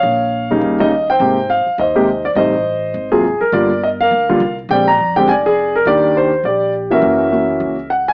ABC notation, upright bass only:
X:1
M:4/4
L:1/8
Q:"Swing" 1/4=206
K:Eb
V:1 name="Upright bass" clef=bass
B,,,4 E,,4 | A,,,3 z E,,4 | =A,,,4 _A,,,3 z | G,,,4 D,,2 C,,2 |
B,,,2 F,,2 F,,,4 | E,,4 B,,,4 | _G,,,4 _D,,4 |]